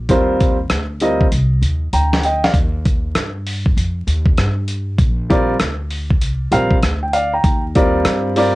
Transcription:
0.09 0.67 D#2 loud
0.09 0.56 G3 medium
0.09 0.56 C4 medium
0.09 0.56 F4 medium
0.09 0.56 A#4 medium
0.09 0.56 C5 medium
0.09 kick medium
0.09 closed hi-hat medium
0.40 kick medium
0.40 closed hi-hat medium
0.70 1.28 D2 medium
0.70 cross-stick loud
0.70 closed hi-hat medium
1.00 1.25 G3 medium
1.00 1.25 C4 medium
1.00 1.25 F4 medium
1.00 1.26 A#4 medium
1.00 1.26 D#5 medium
1.00 closed hi-hat medium
1.21 kick medium
1.32 1.61 C2 medium
1.32 closed hi-hat loud
1.62 1.91 D#2 medium
1.62 closed hi-hat medium
1.93 2.51 D2 medium
1.93 2.22 G5 soft
1.93 2.22 A#5 medium
1.93 closed hi-hat medium
2.13 snare medium
2.23 2.43 D#5 medium
2.23 2.42 G5 medium
2.23 closed hi-hat medium
2.44 2.55 D5 soft
2.44 2.54 F5 medium
2.44 snare medium
2.54 3.12 D#2 loud
2.54 kick loud
2.54 closed hi-hat medium
2.85 kick medium
2.85 closed hi-hat medium
3.15 3.73 G2 medium
3.15 cross-stick loud
3.15 closed hi-hat loud
3.47 open hi-hat medium
3.66 kick medium
3.77 4.06 F2 medium
3.77 closed hi-hat loud
4.07 4.36 D#2 medium
4.07 closed hi-hat medium
4.26 kick medium
4.38 4.96 G2 loud
4.38 cross-stick loud
4.38 closed hi-hat medium
4.68 closed hi-hat medium
4.99 5.57 A#1 loud
4.99 kick loud
4.99 closed hi-hat medium
5.30 5.54 G3 medium
5.30 5.54 C4 medium
5.30 5.54 F4 medium
5.30 5.54 A#4 medium
5.30 5.54 D5 medium
5.30 kick loud
5.30 closed hi-hat medium
5.60 6.21 D2 medium
5.60 cross-stick loud
5.60 closed hi-hat loud
5.91 open hi-hat medium
6.11 kick medium
6.21 6.50 C2 medium
6.21 closed hi-hat loud
6.51 6.81 A#1 loud
6.51 6.76 G3 medium
6.51 6.76 C4 medium
6.51 6.76 F4 medium
6.51 6.76 A#4 medium
6.51 6.76 F5 medium
6.51 closed hi-hat medium
6.71 kick medium
6.83 7.41 D2 medium
6.83 cross-stick loud
6.83 closed hi-hat medium
7.03 7.13 G5 medium
7.13 7.32 D5 medium
7.13 7.32 F5 medium
7.13 closed hi-hat medium
7.33 7.62 G5 medium
7.33 7.62 A#5 medium
7.44 8.02 D#2 loud
7.44 kick medium
7.44 closed hi-hat medium
7.75 8.35 G3 medium
7.75 8.35 C4 medium
7.75 8.36 F4 medium
7.75 8.36 A#4 medium
7.75 8.36 D5 medium
7.75 kick medium
7.75 closed hi-hat medium
8.05 8.55 G2 medium
8.05 cross-stick loud
8.05 closed hi-hat loud
8.36 8.55 G3 medium
8.36 8.55 C4 medium
8.36 8.55 F4 medium
8.36 8.55 A#4 medium
8.36 8.55 D5 medium
8.36 open hi-hat medium

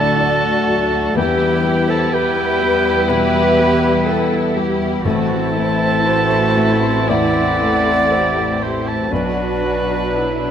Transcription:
0.00 1.14 D2 medium
0.00 1.20 A2 medium
0.00 1.15 D3 medium
0.00 0.49 F#3 medium
0.00 0.91 A3 medium
0.00 1.13 A3 medium
0.00 1.14 A3 medium
0.00 1.20 A3 medium
0.00 0.91 D4 medium
0.00 1.14 D4 medium
0.00 0.21 E4 medium
0.00 1.13 F#4 medium
0.00 1.18 A4 loud
0.00 1.21 A4 medium
0.00 0.21 D5 medium
0.00 0.42 D5 medium
0.00 1.17 D5 loud
0.00 1.21 F#5 medium
0.00 1.17 A5 loud
0.00 0.19 D6 medium
0.20 1.17 F#4 medium
0.20 0.98 D5 medium
0.20 1.21 D6 medium
0.43 1.20 D5 medium
0.67 1.17 F#3 medium
0.67 1.20 F#4 medium
0.92 1.20 D4 medium
1.15 3.06 E2 medium
1.15 5.01 E2 medium
1.15 5.05 E3 medium
1.15 5.04 G3 medium
1.15 5.05 G3 medium
1.15 5.00 B3 medium
1.15 5.01 B3 medium
1.15 5.01 E4 medium
1.15 1.88 G4 medium
1.15 2.11 G4 medium
1.15 1.89 B4 loud
1.15 1.92 G5 loud
1.40 5.30 E4 medium
1.63 4.81 G3 medium
1.63 2.42 G3 medium
1.87 2.35 G4 medium
1.87 2.14 A4 loud
1.87 2.11 C5 medium
1.87 2.15 A5 loud
2.12 3.11 G4 medium
2.12 3.11 B4 loud
2.12 4.56 B4 medium
2.12 2.90 B4 medium
2.12 3.08 B4 medium
2.12 3.11 G5 loud
2.36 4.32 G4 medium
2.60 3.39 G3 medium
2.60 3.09 G5 medium
2.85 3.34 B5 medium
3.09 3.88 B2 medium
3.09 4.08 G4 loud
3.09 4.56 B4 loud
3.09 4.56 E5 medium
3.09 3.58 G5 medium
3.35 3.83 B5 medium
3.59 4.37 G3 medium
3.59 4.07 G5 medium
3.84 5.09 B5 medium
4.08 4.57 A4 medium
4.08 4.85 B4 medium
4.08 5.09 G5 medium
4.33 5.09 G4 medium
4.57 5.05 G3 medium
4.57 5.05 G4 medium
4.57 5.09 B4 medium
4.82 5.09 G3 medium
5.04 9.07 A1 medium
5.04 7.04 A1 medium
5.04 6.51 A2 medium
5.04 8.95 A2 medium
5.04 9.07 E3 medium
5.04 5.27 A3 medium
5.04 9.07 A3 medium
5.04 9.11 C4 medium
5.04 9.07 E4 medium
5.04 5.54 F#4 medium
5.04 7.10 A4 loud
5.04 7.13 C5 loud
5.04 7.11 A5 loud
5.30 9.15 E3 medium
5.30 5.54 C4 medium
5.54 5.78 A3 medium
5.54 8.85 A3 medium
5.54 6.34 A3 medium
5.54 6.02 E4 medium
5.79 6.04 C4 medium
5.79 9.15 E4 medium
6.03 6.28 A3 medium
6.03 7.09 F#4 medium
6.03 6.87 C5 medium
6.03 8.61 C5 medium
6.28 6.55 C4 medium
6.28 8.35 A4 medium
6.55 6.82 A3 medium
6.55 7.40 A3 medium
6.55 7.08 E5 medium
6.82 7.08 C4 medium
6.82 7.35 C6 medium
7.08 7.91 E2 medium
7.08 7.32 A3 medium
7.08 7.61 E4 medium
7.08 8.61 D5 loud
7.08 8.64 D5 loud
7.08 7.60 E5 medium
7.08 8.61 F#5 loud
7.36 7.61 C4 medium
7.36 7.86 C6 medium
7.61 8.41 A3 medium
7.61 7.86 A3 medium
7.61 8.11 A4 medium
7.61 8.11 E5 medium
7.86 8.11 C4 medium
7.86 9.16 C6 medium
8.11 8.36 A3 medium
8.11 9.12 G4 medium
8.11 8.91 C5 medium
8.11 9.16 E5 medium
8.36 8.61 C4 medium
8.36 9.15 A4 medium
8.60 8.85 A3 medium
8.60 9.11 A3 soft
8.60 8.89 C5 medium
8.60 9.15 C5 medium
8.60 8.89 C5 medium
8.60 8.85 E5 medium
8.86 9.15 A3 medium
8.86 9.11 C4 medium
8.86 9.13 A4 medium
8.86 9.13 C5 medium
8.86 9.12 A5 medium
9.11 10.51 B1 medium
9.11 10.51 B2 medium
9.11 10.51 F#3 medium
9.11 9.34 B3 medium
9.11 10.51 D4 medium
9.11 10.09 F#4 medium
9.11 10.51 B4 medium
9.11 10.51 B4 loud
9.11 10.51 D5 loud
9.35 9.59 B3 medium
9.60 10.41 F#3 medium
9.60 9.84 B3 medium
9.85 10.08 B3 medium
9.85 10.51 D4 soft
10.10 10.35 B3 medium
10.10 10.51 E4 medium
10.10 10.51 D5 soft
10.36 10.51 B3 medium

